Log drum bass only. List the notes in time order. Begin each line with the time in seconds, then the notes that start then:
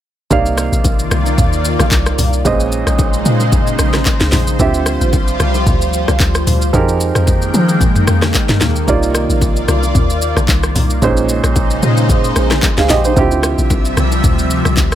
0.31 C2
0.72 A#1
1.11 C2
1.38 D#2
1.79 A#1
1.91 C2
2.18 C2
2.45 A#1
2.87 A#1
3.26 A#2
3.79 A#1
4.21 C#2
4.33 A#1
4.59 D2
5.01 A#1
5.40 C2
5.66 D2
6.08 C2
6.20 D2
6.47 D2
6.74 F2
7.15 F2
7.54 F3
8.07 F2
8.49 G2
8.61 D#2
8.88 C2
9.29 A#1
9.68 C2
9.95 D#2
10.36 A#1
10.48 C2
10.75 C2
11.02 A#1
11.44 A#1
11.83 A#2
12.36 A#1
12.78 C#2
12.90 A#1
13.16 D2
13.58 A#1
13.97 C2
14.24 D2
14.65 C2
14.77 D2